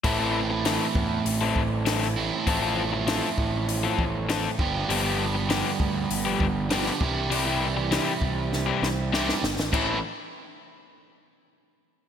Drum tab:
CC |----------------|----------------|----------------|----------------|
HH |o---o---o---o---|o---o---o---o---|o---o---o---o---|o---o-----------|
SD |----o-------oo--|----o-------o---|----o-------oo--|----o---o-o-oooo|
BD |o-----o---o-----|o-----o---o---o-|------o---o---o-|------o---------|

CC |x---------------|
HH |----------------|
SD |----------------|
BD |o---------------|